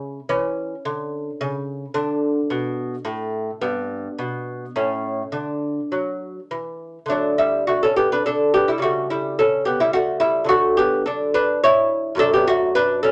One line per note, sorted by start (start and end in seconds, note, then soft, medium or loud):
0.00 0.19 C#3 medium
0.00 0.26 D4 soft
0.29 0.74 E3 medium
0.29 1.91 C#4 medium
0.85 1.30 D3 medium
1.41 1.85 C#3 medium
1.94 2.39 D3 medium
1.94 3.57 D4 medium
2.50 2.95 B2 medium
3.05 3.50 A2 medium
3.61 4.07 G2 medium
3.61 4.71 B3 medium
4.19 4.64 B2 medium
4.76 5.22 A2 medium
4.76 5.29 C#4 soft
5.32 5.79 D3 medium
5.32 7.05 D4 soft
5.92 6.39 F#3 medium
6.51 6.98 E3 medium
7.06 8.77 D3 medium
7.06 7.68 A3 soft
7.06 7.37 D4 medium
7.11 7.37 F#3 medium
7.38 7.66 G3 medium
7.38 7.66 E4 medium
7.67 7.82 A3 medium
7.67 7.82 F#4 medium
7.83 7.97 C#4 medium
7.83 7.96 A4 medium
7.96 8.10 B3 medium
7.96 8.11 G4 medium
8.12 8.25 D4 medium
8.12 8.25 B4 medium
8.26 8.53 D4 medium
8.26 8.53 A4 medium
8.54 8.68 B3 medium
8.54 8.68 G4 medium
8.68 8.78 G3 medium
8.68 8.82 E4 medium
8.78 10.44 C#3 medium
8.78 9.10 G3 soft
8.82 9.09 A3 medium
8.82 9.09 F#4 medium
9.10 9.37 G3 medium
9.10 9.38 E4 medium
9.39 9.65 C#4 medium
9.39 9.65 A4 medium
9.65 9.80 B3 medium
9.65 9.80 G4 medium
9.80 9.94 G3 medium
9.80 9.93 E4 medium
9.93 10.21 A3 medium
9.93 10.20 F#4 medium
10.20 10.46 G3 medium
10.20 10.48 E4 medium
10.45 12.12 D3 medium
10.45 12.13 F#3 soft
10.49 10.77 A3 medium
10.49 10.77 F#4 medium
10.77 11.05 B3 medium
10.77 11.05 G4 medium
11.06 11.33 D4 medium
11.06 11.33 A4 medium
11.34 11.61 D4 medium
11.34 11.62 B4 medium
11.64 12.16 E4 medium
11.64 12.17 C#5 loud
12.15 13.12 F#2 medium
12.15 13.12 F#3 medium
12.15 12.48 A3 medium
12.19 12.33 D4 medium
12.19 12.33 A4 loud
12.33 12.47 B3 medium
12.33 12.47 G4 medium
12.47 12.74 A3 medium
12.47 12.74 F#4 loud
12.75 13.01 D4 medium
12.75 13.01 B4 loud
13.03 13.12 C#4 medium
13.03 13.12 A4 medium